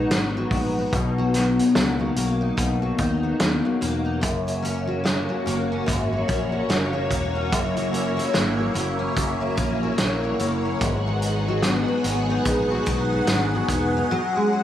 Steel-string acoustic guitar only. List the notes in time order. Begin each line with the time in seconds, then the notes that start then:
Already playing: G#2 F#3 B3 D#4
0.13 B3
0.37 F#3
0.54 B3
0.79 D#4
0.94 B2
1.18 F#3
1.34 D#4
1.59 F#3
1.76 A#3
2.00 F#3
2.17 A#3
2.41 D#4
2.57 B2
2.82 F#3
2.98 D#4
3.23 F#3
3.40 A#3
3.65 F#3
3.81 A#3
4.05 D#4
4.21 F#2
4.47 F#3
4.62 C#4
4.87 F#3
5.04 A#3
5.29 F#3
5.46 A#3
5.72 C#4
5.86 F#2
6.12 F#3
6.28 C#4
6.52 F#3
6.69 A#3
6.93 F#3
7.10 A#3
7.35 C#4
7.52 F#2
7.77 F#3
7.93 C#4
8.17 F#3
8.33 A#3
8.59 F#3
8.74 A#3
8.99 C#4
9.16 F#2
9.41 F#3
9.59 C#4
9.83 F#3
9.98 A#3
10.24 F#3
10.40 A#3
10.65 C#4
10.82 G#2
11.08 F#3
11.25 D#4
11.48 F#3
11.64 B3
11.88 F#3
12.05 B3
12.30 D#4
12.47 G#2
12.71 F#3
12.87 D#4
13.13 F#3
13.30 B3
13.55 F#3
13.71 B3
13.97 D#4
14.11 F#3
14.36 G#3
14.53 F#4